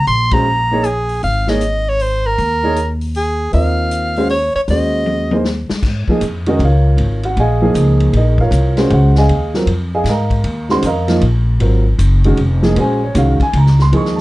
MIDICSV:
0, 0, Header, 1, 6, 480
1, 0, Start_track
1, 0, Tempo, 384862
1, 87, Time_signature, 3, 2, 24, 8
1, 17721, End_track
2, 0, Start_track
2, 0, Title_t, "Soprano saxophone"
2, 0, Program_c, 0, 64
2, 93, Note_on_c, 0, 84, 101
2, 417, Note_on_c, 0, 82, 91
2, 436, Note_off_c, 0, 84, 0
2, 1063, Note_on_c, 0, 68, 80
2, 1082, Note_off_c, 0, 82, 0
2, 1536, Note_off_c, 0, 68, 0
2, 1546, Note_on_c, 0, 77, 91
2, 1864, Note_on_c, 0, 75, 79
2, 1882, Note_off_c, 0, 77, 0
2, 2355, Note_on_c, 0, 73, 83
2, 2374, Note_off_c, 0, 75, 0
2, 2516, Note_on_c, 0, 72, 84
2, 2535, Note_off_c, 0, 73, 0
2, 2826, Note_on_c, 0, 70, 99
2, 2845, Note_off_c, 0, 72, 0
2, 3648, Note_off_c, 0, 70, 0
2, 3946, Note_on_c, 0, 68, 76
2, 4382, Note_off_c, 0, 68, 0
2, 4412, Note_on_c, 0, 77, 81
2, 5316, Note_off_c, 0, 77, 0
2, 5370, Note_on_c, 0, 73, 78
2, 5657, Note_off_c, 0, 73, 0
2, 5681, Note_on_c, 0, 73, 89
2, 5754, Note_off_c, 0, 73, 0
2, 5865, Note_on_c, 0, 75, 83
2, 6761, Note_off_c, 0, 75, 0
2, 17721, End_track
3, 0, Start_track
3, 0, Title_t, "Upright piano"
3, 0, Program_c, 1, 0
3, 402, Note_on_c, 1, 56, 64
3, 405, Note_on_c, 1, 61, 59
3, 405, Note_on_c, 1, 66, 58
3, 417, Note_on_c, 1, 72, 63
3, 552, Note_off_c, 1, 56, 0
3, 553, Note_off_c, 1, 61, 0
3, 553, Note_off_c, 1, 66, 0
3, 559, Note_off_c, 1, 72, 0
3, 890, Note_on_c, 1, 58, 73
3, 892, Note_on_c, 1, 63, 69
3, 902, Note_on_c, 1, 68, 65
3, 904, Note_on_c, 1, 73, 83
3, 1036, Note_off_c, 1, 58, 0
3, 1037, Note_off_c, 1, 63, 0
3, 1042, Note_off_c, 1, 68, 0
3, 1043, Note_off_c, 1, 73, 0
3, 1847, Note_on_c, 1, 58, 67
3, 1855, Note_on_c, 1, 68, 66
3, 1857, Note_on_c, 1, 63, 60
3, 1859, Note_on_c, 1, 73, 69
3, 1994, Note_off_c, 1, 58, 0
3, 1998, Note_off_c, 1, 68, 0
3, 1999, Note_off_c, 1, 63, 0
3, 2000, Note_off_c, 1, 73, 0
3, 3285, Note_on_c, 1, 58, 77
3, 3286, Note_on_c, 1, 63, 69
3, 3293, Note_on_c, 1, 68, 73
3, 3299, Note_on_c, 1, 73, 82
3, 3432, Note_off_c, 1, 58, 0
3, 3433, Note_off_c, 1, 63, 0
3, 3436, Note_off_c, 1, 68, 0
3, 3439, Note_off_c, 1, 73, 0
3, 4394, Note_on_c, 1, 60, 65
3, 4401, Note_on_c, 1, 65, 60
3, 4406, Note_on_c, 1, 70, 58
3, 4413, Note_on_c, 1, 75, 70
3, 5129, Note_off_c, 1, 60, 0
3, 5132, Note_off_c, 1, 65, 0
3, 5135, Note_off_c, 1, 70, 0
3, 5138, Note_off_c, 1, 75, 0
3, 5206, Note_on_c, 1, 56, 74
3, 5208, Note_on_c, 1, 61, 63
3, 5214, Note_on_c, 1, 72, 76
3, 5215, Note_on_c, 1, 66, 63
3, 5350, Note_off_c, 1, 56, 0
3, 5351, Note_off_c, 1, 61, 0
3, 5354, Note_off_c, 1, 72, 0
3, 5355, Note_off_c, 1, 66, 0
3, 5855, Note_on_c, 1, 56, 60
3, 5860, Note_on_c, 1, 61, 57
3, 5863, Note_on_c, 1, 66, 54
3, 5865, Note_on_c, 1, 72, 69
3, 6577, Note_off_c, 1, 56, 0
3, 6580, Note_off_c, 1, 61, 0
3, 6581, Note_off_c, 1, 66, 0
3, 6582, Note_off_c, 1, 72, 0
3, 6640, Note_on_c, 1, 58, 66
3, 6643, Note_on_c, 1, 63, 60
3, 6648, Note_on_c, 1, 68, 56
3, 6648, Note_on_c, 1, 72, 77
3, 6786, Note_off_c, 1, 58, 0
3, 6787, Note_off_c, 1, 63, 0
3, 6790, Note_off_c, 1, 68, 0
3, 6790, Note_off_c, 1, 72, 0
3, 7597, Note_on_c, 1, 53, 68
3, 7600, Note_on_c, 1, 58, 65
3, 7608, Note_on_c, 1, 63, 67
3, 7612, Note_on_c, 1, 68, 79
3, 7743, Note_off_c, 1, 53, 0
3, 7744, Note_off_c, 1, 58, 0
3, 7748, Note_off_c, 1, 63, 0
3, 7750, Note_off_c, 1, 68, 0
3, 8068, Note_on_c, 1, 51, 77
3, 8068, Note_on_c, 1, 56, 67
3, 8069, Note_on_c, 1, 61, 75
3, 8075, Note_on_c, 1, 66, 87
3, 8090, Note_on_c, 1, 75, 75
3, 8095, Note_on_c, 1, 68, 65
3, 8097, Note_on_c, 1, 63, 64
3, 8099, Note_on_c, 1, 70, 64
3, 8217, Note_off_c, 1, 51, 0
3, 8218, Note_off_c, 1, 56, 0
3, 8218, Note_off_c, 1, 61, 0
3, 8221, Note_off_c, 1, 66, 0
3, 8240, Note_off_c, 1, 75, 0
3, 8243, Note_off_c, 1, 68, 0
3, 8244, Note_off_c, 1, 63, 0
3, 8245, Note_off_c, 1, 70, 0
3, 8282, Note_on_c, 1, 77, 80
3, 8284, Note_on_c, 1, 65, 54
3, 8286, Note_on_c, 1, 70, 53
3, 8291, Note_on_c, 1, 73, 61
3, 9000, Note_off_c, 1, 77, 0
3, 9002, Note_off_c, 1, 65, 0
3, 9002, Note_off_c, 1, 70, 0
3, 9005, Note_off_c, 1, 73, 0
3, 9041, Note_on_c, 1, 66, 70
3, 9042, Note_on_c, 1, 78, 81
3, 9195, Note_off_c, 1, 66, 0
3, 9196, Note_off_c, 1, 78, 0
3, 9223, Note_on_c, 1, 80, 86
3, 9225, Note_on_c, 1, 68, 73
3, 9225, Note_on_c, 1, 75, 70
3, 9228, Note_on_c, 1, 77, 68
3, 9498, Note_off_c, 1, 68, 0
3, 9502, Note_on_c, 1, 53, 80
3, 9504, Note_on_c, 1, 58, 73
3, 9513, Note_on_c, 1, 63, 70
3, 9517, Note_on_c, 1, 68, 89
3, 9654, Note_off_c, 1, 80, 0
3, 9655, Note_off_c, 1, 75, 0
3, 9658, Note_off_c, 1, 77, 0
3, 10116, Note_off_c, 1, 53, 0
3, 10117, Note_off_c, 1, 58, 0
3, 10122, Note_off_c, 1, 63, 0
3, 10123, Note_off_c, 1, 68, 0
3, 10187, Note_on_c, 1, 68, 51
3, 10188, Note_on_c, 1, 70, 47
3, 10188, Note_on_c, 1, 75, 66
3, 10194, Note_on_c, 1, 63, 51
3, 10471, Note_off_c, 1, 70, 0
3, 10474, Note_off_c, 1, 68, 0
3, 10474, Note_off_c, 1, 75, 0
3, 10478, Note_off_c, 1, 63, 0
3, 10480, Note_on_c, 1, 77, 85
3, 10486, Note_on_c, 1, 73, 63
3, 10488, Note_on_c, 1, 65, 65
3, 10489, Note_on_c, 1, 70, 70
3, 10940, Note_on_c, 1, 56, 88
3, 10946, Note_on_c, 1, 61, 79
3, 10948, Note_on_c, 1, 72, 92
3, 10949, Note_on_c, 1, 66, 73
3, 11074, Note_off_c, 1, 77, 0
3, 11077, Note_off_c, 1, 73, 0
3, 11078, Note_off_c, 1, 65, 0
3, 11079, Note_off_c, 1, 70, 0
3, 11123, Note_off_c, 1, 66, 0
3, 11139, Note_on_c, 1, 78, 79
3, 11142, Note_on_c, 1, 66, 60
3, 11430, Note_off_c, 1, 78, 0
3, 11431, Note_off_c, 1, 66, 0
3, 11447, Note_on_c, 1, 80, 77
3, 11450, Note_on_c, 1, 68, 63
3, 11455, Note_on_c, 1, 75, 66
3, 11456, Note_on_c, 1, 77, 61
3, 11555, Note_off_c, 1, 56, 0
3, 11559, Note_off_c, 1, 61, 0
3, 11560, Note_off_c, 1, 72, 0
3, 11883, Note_off_c, 1, 80, 0
3, 11885, Note_off_c, 1, 68, 0
3, 11887, Note_off_c, 1, 75, 0
3, 11888, Note_off_c, 1, 77, 0
3, 11904, Note_on_c, 1, 54, 75
3, 11913, Note_on_c, 1, 60, 66
3, 11918, Note_on_c, 1, 65, 65
3, 11920, Note_on_c, 1, 70, 76
3, 12054, Note_off_c, 1, 54, 0
3, 12059, Note_off_c, 1, 60, 0
3, 12061, Note_off_c, 1, 65, 0
3, 12062, Note_off_c, 1, 70, 0
3, 12405, Note_on_c, 1, 75, 61
3, 12405, Note_on_c, 1, 80, 72
3, 12406, Note_on_c, 1, 68, 68
3, 12407, Note_on_c, 1, 77, 65
3, 12557, Note_off_c, 1, 75, 0
3, 12557, Note_off_c, 1, 80, 0
3, 12558, Note_off_c, 1, 68, 0
3, 12558, Note_off_c, 1, 77, 0
3, 12586, Note_on_c, 1, 82, 80
3, 12587, Note_on_c, 1, 75, 56
3, 12590, Note_on_c, 1, 70, 56
3, 12593, Note_on_c, 1, 77, 60
3, 13315, Note_off_c, 1, 75, 0
3, 13315, Note_off_c, 1, 82, 0
3, 13316, Note_off_c, 1, 70, 0
3, 13318, Note_off_c, 1, 77, 0
3, 13346, Note_on_c, 1, 51, 68
3, 13347, Note_on_c, 1, 56, 67
3, 13355, Note_on_c, 1, 66, 88
3, 13356, Note_on_c, 1, 61, 66
3, 13359, Note_on_c, 1, 84, 97
3, 13367, Note_on_c, 1, 72, 72
3, 13496, Note_off_c, 1, 51, 0
3, 13497, Note_off_c, 1, 56, 0
3, 13501, Note_off_c, 1, 61, 0
3, 13501, Note_off_c, 1, 66, 0
3, 13515, Note_off_c, 1, 84, 0
3, 13519, Note_off_c, 1, 72, 0
3, 13540, Note_on_c, 1, 82, 78
3, 13546, Note_on_c, 1, 75, 71
3, 13547, Note_on_c, 1, 77, 67
3, 13550, Note_on_c, 1, 70, 71
3, 13823, Note_on_c, 1, 53, 73
3, 13829, Note_on_c, 1, 58, 73
3, 13835, Note_on_c, 1, 63, 70
3, 13839, Note_on_c, 1, 65, 91
3, 13975, Note_off_c, 1, 82, 0
3, 13976, Note_off_c, 1, 53, 0
3, 13978, Note_off_c, 1, 75, 0
3, 13979, Note_off_c, 1, 58, 0
3, 13979, Note_off_c, 1, 77, 0
3, 13981, Note_off_c, 1, 70, 0
3, 13982, Note_off_c, 1, 63, 0
3, 13984, Note_off_c, 1, 65, 0
3, 14471, Note_on_c, 1, 54, 61
3, 14471, Note_on_c, 1, 60, 57
3, 14479, Note_on_c, 1, 65, 60
3, 14486, Note_on_c, 1, 70, 67
3, 14757, Note_off_c, 1, 54, 0
3, 14757, Note_off_c, 1, 60, 0
3, 14761, Note_off_c, 1, 65, 0
3, 14765, Note_off_c, 1, 70, 0
3, 15280, Note_on_c, 1, 56, 73
3, 15282, Note_on_c, 1, 51, 75
3, 15289, Note_on_c, 1, 61, 65
3, 15295, Note_on_c, 1, 66, 81
3, 15427, Note_off_c, 1, 51, 0
3, 15427, Note_off_c, 1, 56, 0
3, 15431, Note_off_c, 1, 61, 0
3, 15434, Note_off_c, 1, 66, 0
3, 15746, Note_on_c, 1, 53, 77
3, 15750, Note_on_c, 1, 58, 69
3, 15753, Note_on_c, 1, 63, 65
3, 15756, Note_on_c, 1, 68, 87
3, 15901, Note_off_c, 1, 53, 0
3, 15902, Note_off_c, 1, 58, 0
3, 15904, Note_off_c, 1, 63, 0
3, 15905, Note_off_c, 1, 68, 0
3, 15921, Note_on_c, 1, 56, 72
3, 15923, Note_on_c, 1, 61, 64
3, 15930, Note_on_c, 1, 66, 64
3, 15932, Note_on_c, 1, 72, 77
3, 15965, Note_on_c, 1, 80, 81
3, 16205, Note_off_c, 1, 56, 0
3, 16205, Note_off_c, 1, 61, 0
3, 16209, Note_off_c, 1, 66, 0
3, 16210, Note_off_c, 1, 72, 0
3, 16249, Note_off_c, 1, 80, 0
3, 16260, Note_on_c, 1, 73, 72
3, 16401, Note_on_c, 1, 51, 69
3, 16405, Note_on_c, 1, 61, 60
3, 16407, Note_on_c, 1, 56, 53
3, 16410, Note_on_c, 1, 66, 72
3, 16411, Note_off_c, 1, 73, 0
3, 16438, Note_on_c, 1, 77, 89
3, 16686, Note_off_c, 1, 51, 0
3, 16688, Note_off_c, 1, 61, 0
3, 16689, Note_off_c, 1, 56, 0
3, 16690, Note_off_c, 1, 66, 0
3, 16726, Note_off_c, 1, 77, 0
3, 16741, Note_on_c, 1, 80, 95
3, 16892, Note_off_c, 1, 80, 0
3, 16928, Note_on_c, 1, 82, 83
3, 17213, Note_off_c, 1, 82, 0
3, 17235, Note_on_c, 1, 84, 93
3, 17367, Note_on_c, 1, 58, 55
3, 17368, Note_on_c, 1, 53, 64
3, 17377, Note_on_c, 1, 68, 66
3, 17378, Note_on_c, 1, 63, 60
3, 17380, Note_off_c, 1, 84, 0
3, 17417, Note_on_c, 1, 85, 90
3, 17651, Note_off_c, 1, 53, 0
3, 17651, Note_off_c, 1, 58, 0
3, 17656, Note_off_c, 1, 63, 0
3, 17656, Note_off_c, 1, 68, 0
3, 17660, Note_on_c, 1, 81, 62
3, 17681, Note_off_c, 1, 81, 0
3, 17699, Note_off_c, 1, 85, 0
3, 17721, End_track
4, 0, Start_track
4, 0, Title_t, "Upright bass"
4, 0, Program_c, 2, 32
4, 89, Note_on_c, 2, 34, 83
4, 1479, Note_off_c, 2, 34, 0
4, 1534, Note_on_c, 2, 32, 83
4, 2920, Note_off_c, 2, 32, 0
4, 2972, Note_on_c, 2, 39, 91
4, 4357, Note_off_c, 2, 39, 0
4, 4406, Note_on_c, 2, 39, 85
4, 5626, Note_off_c, 2, 39, 0
4, 5835, Note_on_c, 2, 39, 85
4, 7058, Note_off_c, 2, 39, 0
4, 7264, Note_on_c, 2, 44, 81
4, 7561, Note_off_c, 2, 44, 0
4, 7749, Note_on_c, 2, 41, 90
4, 8217, Note_off_c, 2, 41, 0
4, 8222, Note_on_c, 2, 37, 93
4, 8687, Note_off_c, 2, 37, 0
4, 8695, Note_on_c, 2, 32, 82
4, 9169, Note_off_c, 2, 32, 0
4, 9187, Note_on_c, 2, 34, 93
4, 9650, Note_off_c, 2, 34, 0
4, 9657, Note_on_c, 2, 37, 89
4, 10130, Note_off_c, 2, 37, 0
4, 10140, Note_on_c, 2, 34, 85
4, 10604, Note_off_c, 2, 34, 0
4, 10611, Note_on_c, 2, 36, 90
4, 11086, Note_off_c, 2, 36, 0
4, 11107, Note_on_c, 2, 37, 101
4, 11575, Note_off_c, 2, 37, 0
4, 11583, Note_on_c, 2, 39, 77
4, 12045, Note_off_c, 2, 39, 0
4, 12052, Note_on_c, 2, 41, 83
4, 12516, Note_off_c, 2, 41, 0
4, 12523, Note_on_c, 2, 44, 85
4, 13004, Note_off_c, 2, 44, 0
4, 13019, Note_on_c, 2, 39, 76
4, 13492, Note_off_c, 2, 39, 0
4, 13505, Note_on_c, 2, 41, 90
4, 13976, Note_off_c, 2, 41, 0
4, 13984, Note_on_c, 2, 34, 92
4, 14457, Note_off_c, 2, 34, 0
4, 14466, Note_on_c, 2, 32, 81
4, 14938, Note_off_c, 2, 32, 0
4, 14948, Note_on_c, 2, 30, 86
4, 15420, Note_off_c, 2, 30, 0
4, 15437, Note_on_c, 2, 29, 88
4, 15905, Note_off_c, 2, 29, 0
4, 15920, Note_on_c, 2, 34, 80
4, 16388, Note_off_c, 2, 34, 0
4, 16396, Note_on_c, 2, 36, 93
4, 16692, Note_off_c, 2, 36, 0
4, 16879, Note_on_c, 2, 37, 93
4, 17350, Note_off_c, 2, 37, 0
4, 17364, Note_on_c, 2, 39, 87
4, 17721, Note_off_c, 2, 39, 0
4, 17721, End_track
5, 0, Start_track
5, 0, Title_t, "Muted upright bass strokes"
5, 5676, Note_on_c, 9, 29, 36
5, 5801, Note_off_c, 9, 29, 0
5, 7110, Note_on_c, 9, 29, 37
5, 7235, Note_off_c, 9, 29, 0
5, 7579, Note_on_c, 9, 29, 39
5, 7704, Note_off_c, 9, 29, 0
5, 16711, Note_on_c, 9, 29, 43
5, 16836, Note_off_c, 9, 29, 0
5, 17721, End_track
6, 0, Start_track
6, 0, Title_t, "Drums"
6, 81, Note_on_c, 9, 46, 39
6, 206, Note_off_c, 9, 46, 0
6, 390, Note_on_c, 9, 51, 66
6, 395, Note_on_c, 9, 36, 73
6, 514, Note_off_c, 9, 51, 0
6, 520, Note_off_c, 9, 36, 0
6, 1043, Note_on_c, 9, 42, 50
6, 1167, Note_off_c, 9, 42, 0
6, 1359, Note_on_c, 9, 46, 38
6, 1483, Note_off_c, 9, 46, 0
6, 1529, Note_on_c, 9, 46, 43
6, 1653, Note_off_c, 9, 46, 0
6, 1837, Note_on_c, 9, 38, 47
6, 1962, Note_off_c, 9, 38, 0
6, 2005, Note_on_c, 9, 42, 52
6, 2130, Note_off_c, 9, 42, 0
6, 2488, Note_on_c, 9, 46, 47
6, 2612, Note_off_c, 9, 46, 0
6, 2970, Note_on_c, 9, 46, 41
6, 3095, Note_off_c, 9, 46, 0
6, 3445, Note_on_c, 9, 42, 50
6, 3570, Note_off_c, 9, 42, 0
6, 3755, Note_on_c, 9, 46, 36
6, 3879, Note_off_c, 9, 46, 0
6, 3923, Note_on_c, 9, 46, 48
6, 4048, Note_off_c, 9, 46, 0
6, 4400, Note_on_c, 9, 46, 46
6, 4524, Note_off_c, 9, 46, 0
6, 4877, Note_on_c, 9, 42, 55
6, 5002, Note_off_c, 9, 42, 0
6, 5191, Note_on_c, 9, 46, 33
6, 5316, Note_off_c, 9, 46, 0
6, 5355, Note_on_c, 9, 46, 43
6, 5480, Note_off_c, 9, 46, 0
6, 5834, Note_on_c, 9, 46, 46
6, 5958, Note_off_c, 9, 46, 0
6, 6310, Note_on_c, 9, 48, 43
6, 6435, Note_off_c, 9, 48, 0
6, 6623, Note_on_c, 9, 48, 62
6, 6748, Note_off_c, 9, 48, 0
6, 6790, Note_on_c, 9, 38, 58
6, 6915, Note_off_c, 9, 38, 0
6, 7103, Note_on_c, 9, 38, 79
6, 7228, Note_off_c, 9, 38, 0
6, 7267, Note_on_c, 9, 36, 74
6, 7268, Note_on_c, 9, 38, 39
6, 7268, Note_on_c, 9, 49, 73
6, 7392, Note_off_c, 9, 36, 0
6, 7392, Note_off_c, 9, 38, 0
6, 7392, Note_off_c, 9, 49, 0
6, 7579, Note_on_c, 9, 36, 51
6, 7704, Note_off_c, 9, 36, 0
6, 7745, Note_on_c, 9, 44, 53
6, 7745, Note_on_c, 9, 51, 64
6, 7869, Note_off_c, 9, 44, 0
6, 7869, Note_off_c, 9, 51, 0
6, 8059, Note_on_c, 9, 51, 49
6, 8184, Note_off_c, 9, 51, 0
6, 8231, Note_on_c, 9, 51, 60
6, 8355, Note_off_c, 9, 51, 0
6, 8704, Note_on_c, 9, 51, 55
6, 8829, Note_off_c, 9, 51, 0
6, 9021, Note_on_c, 9, 51, 44
6, 9145, Note_off_c, 9, 51, 0
6, 9190, Note_on_c, 9, 51, 54
6, 9315, Note_off_c, 9, 51, 0
6, 9666, Note_on_c, 9, 44, 59
6, 9666, Note_on_c, 9, 51, 70
6, 9791, Note_off_c, 9, 44, 0
6, 9791, Note_off_c, 9, 51, 0
6, 9980, Note_on_c, 9, 51, 50
6, 10105, Note_off_c, 9, 51, 0
6, 10144, Note_on_c, 9, 51, 59
6, 10269, Note_off_c, 9, 51, 0
6, 10453, Note_on_c, 9, 36, 64
6, 10578, Note_off_c, 9, 36, 0
6, 10623, Note_on_c, 9, 44, 64
6, 10623, Note_on_c, 9, 51, 65
6, 10747, Note_off_c, 9, 44, 0
6, 10747, Note_off_c, 9, 51, 0
6, 10935, Note_on_c, 9, 38, 48
6, 10936, Note_on_c, 9, 51, 45
6, 11060, Note_off_c, 9, 38, 0
6, 11061, Note_off_c, 9, 51, 0
6, 11103, Note_on_c, 9, 51, 57
6, 11228, Note_off_c, 9, 51, 0
6, 11415, Note_on_c, 9, 38, 53
6, 11539, Note_off_c, 9, 38, 0
6, 11587, Note_on_c, 9, 51, 62
6, 11712, Note_off_c, 9, 51, 0
6, 11898, Note_on_c, 9, 38, 39
6, 12022, Note_off_c, 9, 38, 0
6, 12061, Note_on_c, 9, 51, 64
6, 12186, Note_off_c, 9, 51, 0
6, 12539, Note_on_c, 9, 38, 42
6, 12540, Note_on_c, 9, 44, 50
6, 12540, Note_on_c, 9, 51, 69
6, 12663, Note_off_c, 9, 38, 0
6, 12665, Note_off_c, 9, 44, 0
6, 12665, Note_off_c, 9, 51, 0
6, 12851, Note_on_c, 9, 36, 55
6, 12854, Note_on_c, 9, 51, 50
6, 12975, Note_off_c, 9, 36, 0
6, 12979, Note_off_c, 9, 51, 0
6, 13019, Note_on_c, 9, 51, 63
6, 13144, Note_off_c, 9, 51, 0
6, 13333, Note_on_c, 9, 38, 37
6, 13458, Note_off_c, 9, 38, 0
6, 13500, Note_on_c, 9, 44, 53
6, 13500, Note_on_c, 9, 51, 77
6, 13625, Note_off_c, 9, 44, 0
6, 13625, Note_off_c, 9, 51, 0
6, 13818, Note_on_c, 9, 38, 42
6, 13819, Note_on_c, 9, 51, 50
6, 13942, Note_off_c, 9, 38, 0
6, 13944, Note_off_c, 9, 51, 0
6, 13986, Note_on_c, 9, 51, 64
6, 14111, Note_off_c, 9, 51, 0
6, 14468, Note_on_c, 9, 51, 62
6, 14593, Note_off_c, 9, 51, 0
6, 14953, Note_on_c, 9, 44, 57
6, 14953, Note_on_c, 9, 51, 75
6, 15077, Note_off_c, 9, 44, 0
6, 15077, Note_off_c, 9, 51, 0
6, 15268, Note_on_c, 9, 51, 46
6, 15393, Note_off_c, 9, 51, 0
6, 15430, Note_on_c, 9, 51, 56
6, 15555, Note_off_c, 9, 51, 0
6, 15745, Note_on_c, 9, 38, 36
6, 15870, Note_off_c, 9, 38, 0
6, 15916, Note_on_c, 9, 51, 65
6, 16040, Note_off_c, 9, 51, 0
6, 16398, Note_on_c, 9, 44, 56
6, 16398, Note_on_c, 9, 51, 69
6, 16523, Note_off_c, 9, 44, 0
6, 16523, Note_off_c, 9, 51, 0
6, 16711, Note_on_c, 9, 36, 58
6, 16718, Note_on_c, 9, 51, 51
6, 16836, Note_off_c, 9, 36, 0
6, 16843, Note_off_c, 9, 51, 0
6, 16878, Note_on_c, 9, 51, 70
6, 17002, Note_off_c, 9, 51, 0
6, 17040, Note_on_c, 9, 38, 33
6, 17165, Note_off_c, 9, 38, 0
6, 17199, Note_on_c, 9, 38, 45
6, 17324, Note_off_c, 9, 38, 0
6, 17369, Note_on_c, 9, 51, 59
6, 17494, Note_off_c, 9, 51, 0
6, 17526, Note_on_c, 9, 38, 33
6, 17651, Note_off_c, 9, 38, 0
6, 17721, End_track
0, 0, End_of_file